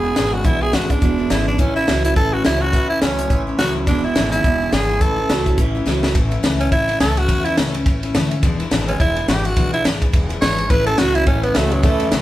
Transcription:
Already playing: E1 E2 B2 G#4
0.04 E3 G#3 D4 E4
0.16 G#1 E2 B2 C#3 E3 G#3 D4 E4, snare, closed hi-hat
0.32 E3 G#3 D4 E4 F#4
0.44 B1 E2 B2 E3 G#3 D4 E4, kick, closed hi-hat
0.61 E3 G#3 D4 E4 G#4
0.73 G#1 E2 B2 C#3 E3 G#3 D4 E4 F#4, snare, closed hi-hat
0.89 E3 G#3 D4 E4, kick, closed hi-hat
1.01 E1 E2 B2 E3 G#3 D4 E4, kick, closed hi-hat
1.18 E3 G#3 D4 E4
1.30 G#1 E2 B2 C#3 E3 G#3 D4 E4, snare, closed hi-hat
1.47 E3 G#3 D4 E4
1.58 A1 A2 E3 A3 C#4 E4, kick, closed hi-hat
1.76 A3 C#4 E4
1.87 C#2 A2 E3 F#3 A3 C#4 E4, snare, closed hi-hat
2.04 A3 C#4 E4, closed hi-hat
2.16 A1 A2 E3 A3 C#4 E4 A4, kick, closed hi-hat
2.32 A3 C#4 E4 F#4
2.44 C#2 A2 E3 F#3 A3 C#4 E4, snare, closed hi-hat
2.61 A3 C#4 E4 F#4
2.73 E2 A2 E3 A3 C#4 E4, kick, closed hi-hat
2.89 A3 C#4 E4
3.01 C#2 A2 E3 F#3 A3 C#4 E4, snare, closed hi-hat
3.19 A3 C#4 E4, closed hi-hat
3.30 A1 A2 E3 A3 C#4 E4, kick, closed hi-hat
3.47 A3 C#4 E4
3.58 C#2 A2 E3 F#3 A3 C#4 E4 F#4, snare, closed hi-hat
3.76 A3 C#4 E4
3.87 E1 E2 B2 E3 G#3 D4 E4, kick, closed hi-hat
4.04 E3 G#3 D4 E4
4.15 G#1 E2 B2 C#3 E3 G#3 D4 E4, snare, closed hi-hat
4.31 E3 G#3 D4 E4, closed hi-hat
4.44 E1 E2 B2 E3 G#3 D4 E4, kick, closed hi-hat
4.61 E3 G#3 D4 E4
4.72 G#1 E2 B2 C#3 E3 G#3 D4 E4 G#4, snare, closed hi-hat
4.89 E3 G#3 D4 E4
5.01 A1 A2 E3 A3 C#4 E4 A4, kick, closed hi-hat
5.17 A3 C#4 E4
5.29 C#2 A2 E3 F#3 A3 C#4 E4, snare, closed hi-hat
5.46 A3 C#4 E4, kick, closed hi-hat
5.58 A1 A2 E3 A3 C#4 E4, kick, closed hi-hat
5.75 A3 C#4 E4
5.86 C#2 A2 E3 F#3 A3 C#4 E4, snare
6.03 A3 C#4 E4, snare
6.15 A1 A2 E3 A3 C#4 E4, kick, ride
6.31 A3 C#4 E4, ride
6.43 C#2 A2 E3 A3 C#4 E4, snare, ride
6.60 A3 C#4 E4, ride
6.72 A1 E3 A3 C#4 E4, kick, ride
6.88 A3 C#4 E4, ride
7.00 C#2 A2 E3 A3 C#4 E4 A4, snare, ride
7.17 A3 C#4 E4 F#4, ride
7.29 E2 A2 E3 A3 C#4 E4, kick, ride
7.45 A3 C#4 E4, ride
7.57 C#2 A2 E3 A3 C#4 E4, snare, ride
7.74 A3 C#4 E4, ride
7.86 A1 E3 A3 C#4 E4, kick, ride
8.03 A3 C#4 E4, ride
8.14 D2 A2 E3 A3 C#4 E4, snare, ride
8.31 A3 C#4 E4, ride
8.43 E1 E2 B2 E3 G#3 D4 E4, kick, ride
8.60 E3 G#3 D4 E4, ride
8.71 G#1 E2 B2 E3 G#3 D4 E4, snare, ride
8.88 E3 G#3 C#4 D4 E4, ride
9.00 E1 E3 G#3 D4 E4, kick, ride
9.16 E3 G#3 D4 E4, ride
9.28 G#1 E2 B2 E3 G#3 D4 E4 G4, snare, ride
9.45 E3 G#3 D4 E4 F#4, ride
9.57 B1 E2 B2 E3 G#3 D4 E4, kick, ride
9.73 E3 G#3 D4 E4, ride
9.84 G#1 E2 B2 E3 G#3 D4 E4, snare, ride
10.01 E3 G#3 D4 E4, kick, ride
10.13 E1 E3 G#3 D4 E4, kick, ride
10.29 E3 G#3 D4 E4, ride
10.41 G#1 E2 B2 E3 G#3 D4 E4 C#5, snare, ride
10.58 E3 G#3 D4 E4, ride
10.70 A1 A2 E3 A3 C#4 E4 B4, kick, ride
10.87 A3 C#4 E4 A4, ride
10.98 C#2 A2 E3 F#3 A3 C#4 E4 F#4, snare, ride
11.15 A3 C#4 E4, ride
11.26 A1 A2 E3 A3 C#4 E4, kick, ride
11.43 A3 B3 C#4 E4, ride
11.55 C#2 A2 E3 F#3 A3 C#4 E4, snare, ride
11.71 F#3 A3 C#4 E4, ride
11.83 E2 A2 E3 A3 C#4 E4, kick, ride
12.00 A3 C#4 E4, ride
12.11 C#2 A2 E3 F#3 A3 C#4 E4, snare, ride

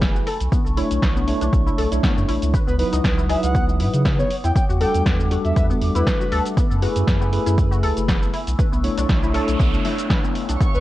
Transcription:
Already playing: F#1 A3 E4 G#4 B4 G#5 B5
0.02 kick, snare, closed hi-hat, shaker
0.15 F#4, shaker
0.27 D4 A4 C#6, open hi-hat
0.40 B1, closed hi-hat, shaker
0.52 B3, kick, closed hi-hat, shaker
0.66 B1, shaker
0.77 A3 D4 E4 C#5, open hi-hat
0.91 B1, closed hi-hat, shaker
1.02 B1 B4, kick, snare, closed hi-hat, shaker
1.16 B3, shaker
1.27 A3 D4 E4 C#5, open hi-hat
1.41 B1 D4, closed hi-hat, shaker
1.53 B1, kick, closed hi-hat, shaker
1.66 E4, shaker
1.78 B1 A4, open hi-hat
1.91 B1 A3 D4 E4 C#5, closed hi-hat, shaker
2.03 B3, kick, snare, closed hi-hat, shaker
2.17 F#2, shaker
2.28 A1 E4, open hi-hat
2.42 C#2, closed hi-hat, shaker
2.54 B4 F#5 D#6, kick, closed hi-hat, shaker
2.67 C#2 B3 B4, shaker
2.79 F#3 D#4 E4 B4, open hi-hat
2.93 C#2 D#4, closed hi-hat, shaker
3.04 C#2, kick, snare, closed hi-hat, shaker
3.18 E4, shaker
3.29 F#3 D#4 E4 G#4 B4 E5, open hi-hat
3.43 C#2 F#5, closed hi-hat, shaker
3.54 B3, kick, closed hi-hat, shaker
3.69 shaker
3.80 G#2 E4, open hi-hat
3.93 C#3, closed hi-hat, shaker
4.05 B4, kick, snare, closed hi-hat, shaker
4.18 B3 C#5, shaker
4.30 A3 D6, open hi-hat
4.44 E2 E4 G5, closed hi-hat, shaker
4.55 G5, kick, closed hi-hat, shaker
4.69 E2 F#4, shaker
4.80 G3 D4 F#4 A4 G5, open hi-hat
4.94 E2, closed hi-hat, shaker
5.06 E2 B3, kick, snare, closed hi-hat, shaker
5.20 shaker
5.30 G3 D4 F#4 A4, open hi-hat
5.44 E2 E5, closed hi-hat, shaker
5.56 E2 B4 E5, kick, closed hi-hat, shaker
5.70 B3, shaker
5.81 E2, open hi-hat
5.95 E2 E4 B4, closed hi-hat, shaker
6.07 kick, snare, closed hi-hat, shaker
6.20 F#4, shaker
6.32 D2 A4, open hi-hat
6.46 closed hi-hat, shaker
6.57 B3 G#5 B5 E6, kick, closed hi-hat, shaker
6.71 F#2, shaker
6.82 A3 E4 F#4 G#4 B4, open hi-hat
6.96 F#2, closed hi-hat, shaker
7.08 F#2 B4, kick, snare, closed hi-hat, shaker
7.21 B3, shaker
7.32 A3 E4 G#4 B4, open hi-hat
7.46 F#2 E4, closed hi-hat, shaker
7.58 kick, closed hi-hat, shaker
7.71 F#4, shaker
7.83 C#2 A4, open hi-hat
7.97 F#1, closed hi-hat, shaker
8.08 B3, kick, snare, closed hi-hat, shaker
8.23 shaker
8.34 D4 E4 C#6, open hi-hat
8.47 B1, closed hi-hat, shaker
8.59 B4, kick, closed hi-hat, noise sweep, shaker
8.72 B1 B3, shaker
8.84 A3 D4 E4 C#5, open hi-hat
8.98 B1 D4, closed hi-hat, shaker
9.09 B1, kick, snare, closed hi-hat, shaker
9.23 E4, shaker
9.34 A3 D4 E4 A4 C#5, open hi-hat
9.48 B1, closed hi-hat, shaker
9.60 B1 B3, kick, closed hi-hat, shaker
9.74 shaker
9.85 E4, snare, open hi-hat
9.98 closed hi-hat, shaker
10.10 B4, kick, snare, closed hi-hat, shaker
10.24 B3, shaker
10.35 open hi-hat
10.49 B1 D4, closed hi-hat, shaker
10.60 B3 B4 C#5 F#5 C#6 D#6, kick, closed hi-hat, shaker
10.74 C#2 B4, shaker

